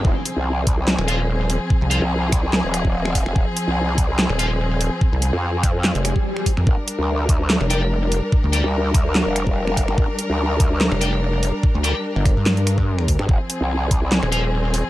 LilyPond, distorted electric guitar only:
\new Staff \with { instrumentName = "Distorted electric guitar" } { \time 4/4 \key f \dorian \tempo 4 = 145 r2 r8 <f' c'' f''>8 r4 | r8 <f' c'' f''>8 r2. | r2 r8 <f' c'' f''>8 r4 | r1 |
r2 r8 <g' d'' g''>8 r4 | r8 <g' d'' g''>8 r2. | r2 r8 <g' d'' g''>8 r4 | r8 <g' d'' g''>8 r2. |
r2 r8 <f' c'' f''>8 r4 | }